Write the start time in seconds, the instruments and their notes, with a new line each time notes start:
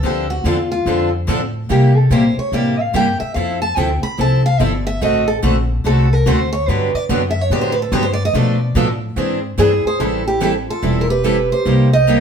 0.03 upright bass D2, steel-string acoustic guitar D3 F3 C4 D4 G4 A4
0.30 steel-string acoustic guitar F#4
0.44 upright bass E2, steel-string acoustic guitar D3 F3 C4 D4 F4 A4
0.72 steel-string acoustic guitar F4
0.86 upright bass F2, steel-string acoustic guitar D3 F3 C4 D4 A4
1.28 upright bass A2, steel-string acoustic guitar D3 F3 C4 D4 A4
1.69 steel-string acoustic guitar C3 G3 A#3 E4 G4, upright bass C3
1.97 steel-string acoustic guitar A4
2.10 upright bass A#2, steel-string acoustic guitar C3 G3 A#3 E4 G4 C5
2.37 steel-string acoustic guitar C#5, muted upright bass stroke
2.52 upright bass A2, steel-string acoustic guitar C3 G3 A#3 E4 G4 D5
2.80 steel-string acoustic guitar F5
2.94 upright bass G2, steel-string acoustic guitar C3 G3 A#3 E4 G4 G5
3.20 steel-string acoustic guitar E5, muted upright bass stroke
3.34 upright bass F2, steel-string acoustic guitar F3 C4 E4 A4 F5
3.62 steel-string acoustic guitar A5
3.77 upright bass D2, steel-string acoustic guitar F3 C4 E4 A4 G5
4.03 steel-string acoustic guitar B5, muted upright bass stroke
4.19 upright bass C2, steel-string acoustic guitar F3 C4 E4 A4 A5
4.46 steel-string acoustic guitar F5
4.60 upright bass G1, steel-string acoustic guitar F3 C4 E4 A4 D5
4.87 steel-string acoustic guitar E5
5.01 upright bass A1, steel-string acoustic guitar D3 A3 C4 F#4 A4 D#5
5.28 steel-string acoustic guitar A4
5.43 upright bass A#1, steel-string acoustic guitar D3 A3 C4 F#4 A4
5.85 upright bass C2, steel-string acoustic guitar D3 A3 C4 F#4 A4
6.13 steel-string acoustic guitar A#4
6.26 upright bass D2, steel-string acoustic guitar D3 A3 C4 F#4 A4 C5
6.53 steel-string acoustic guitar C#5
6.68 upright bass G2, steel-string acoustic guitar D3 F#3 B3 D4 G4 B4
6.94 steel-string acoustic guitar D5, muted upright bass stroke
7.09 upright bass F#2, steel-string acoustic guitar D3 F#3 B3 D4 G4
7.31 steel-string acoustic guitar E5
7.41 steel-string acoustic guitar C#5
7.50 upright bass A2, steel-string acoustic guitar D3 F#3 B3 D4 G4 D5
7.61 steel-string acoustic guitar C5
7.72 steel-string acoustic guitar B4
7.82 steel-string acoustic guitar A4
7.92 upright bass G2, steel-string acoustic guitar D3 F#3 B3 D4 G4 B4
8.03 steel-string acoustic guitar C5
8.13 steel-string acoustic guitar D5
8.25 steel-string acoustic guitar D#5
8.34 upright bass B2, steel-string acoustic guitar B2 F3 A3 D4 A4 B4 D5
8.75 upright bass A2, steel-string acoustic guitar B2 F3 A3 D4 A4 B4
9.16 upright bass G#2, steel-string acoustic guitar E3 C4 D4 G#4 C5
9.58 upright bass G2, steel-string acoustic guitar E3 C4 D4 G#4 C5, clarinet E4
9.85 clarinet G#4, steel-string acoustic guitar C5, muted upright bass stroke
10.00 upright bass A1, steel-string acoustic guitar E3 G3 C4 E4 A4, clarinet E4
10.27 clarinet E4, steel-string acoustic guitar G4
10.40 steel-string acoustic guitar E3 G3 C4 E4 G4 A4, clarinet E4
10.67 clarinet F4, steel-string acoustic guitar A4
10.82 upright bass E1, steel-string acoustic guitar E3 G3 C4 E4 A4
10.99 clarinet F4, steel-string acoustic guitar A#4
11.08 clarinet G4, steel-string acoustic guitar B4
11.24 steel-string acoustic guitar E3 G3 C4 E4 A4
11.52 clarinet G4, steel-string acoustic guitar C5
11.65 upright bass C2, steel-string acoustic guitar C3 G3 A#3 D#4 G4
11.92 clarinet C5, steel-string acoustic guitar D#5
12.08 steel-string acoustic guitar C3 G3 A#3 D#4 G4